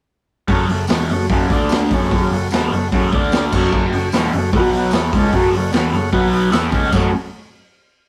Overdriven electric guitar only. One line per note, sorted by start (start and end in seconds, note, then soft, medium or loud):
0.48 0.68 F#2 loud
0.48 0.68 C#3 loud
0.48 0.68 F#3 loud
0.69 0.85 F#2 medium
0.69 0.85 C#3 medium
0.89 1.08 E2 medium
0.89 1.09 B2 loud
0.89 1.09 E3 loud
1.11 1.26 F#2 medium
1.11 1.26 C#3 medium
1.30 1.49 F#2 loud
1.30 1.50 C#3 loud
1.30 1.50 F#3 loud
1.50 1.90 D3 medium
1.50 1.90 A3 medium
1.50 1.91 D4 loud
1.92 2.10 F#2 medium
1.92 2.11 C#3 loud
1.92 2.11 F#3 loud
2.11 2.30 F#2 loud
2.11 2.31 C#3 loud
2.11 2.32 F#3 loud
2.32 2.47 F#2 medium
2.32 2.48 C#3 medium
2.52 2.71 E2 medium
2.52 2.71 B2 loud
2.52 2.72 E3 loud
2.73 2.88 F#2 medium
2.73 2.88 C#3 medium
2.92 3.11 F#2 loud
2.92 3.12 C#3 medium
2.92 3.12 F#3 loud
3.13 3.52 D3 loud
3.13 3.53 A3 medium
3.13 3.53 D4 loud
3.54 3.71 F#2 medium
3.54 3.72 C#3 medium
3.54 3.73 F#3 loud
3.72 3.91 F#2 loud
3.72 3.92 C#3 loud
3.72 3.93 F#3 loud
3.93 4.09 F#2 medium
3.93 4.09 C#3 medium
4.13 4.32 E2 loud
4.13 4.33 B2 loud
4.13 4.34 E3 loud
4.33 4.49 F#2 medium
4.33 4.49 C#3 medium
4.53 4.92 B2 loud
4.53 4.93 F#3 loud
4.53 4.93 B3 loud
4.92 5.12 E3 medium
4.92 5.13 B3 loud
4.92 5.13 E4 loud
5.12 5.32 C#3 medium
5.12 5.33 G#3 loud
5.12 5.33 C#4 loud
5.33 5.52 F#2 loud
5.33 5.53 C#3 loud
5.33 5.53 F#3 loud
5.54 5.69 F#2 medium
5.54 5.70 C#3 medium
5.72 5.92 E2 medium
5.72 5.92 B2 medium
5.72 5.93 E3 loud
5.93 6.09 F#2 medium
5.93 6.09 C#3 medium
6.13 6.51 B2 medium
6.13 6.52 F#3 loud
6.13 6.51 B3 loud
6.51 6.71 E3 medium
6.51 6.73 B3 medium
6.51 6.73 E4 loud
6.72 6.92 C#3 medium
6.72 6.93 G#3 loud
6.72 6.92 C#4 loud
6.93 7.09 F#2 loud
6.93 7.09 C#3 loud
6.93 7.10 F#3 medium
6.93 7.10 A3 loud
6.93 7.10 C#4 loud
6.93 7.10 F#4 loud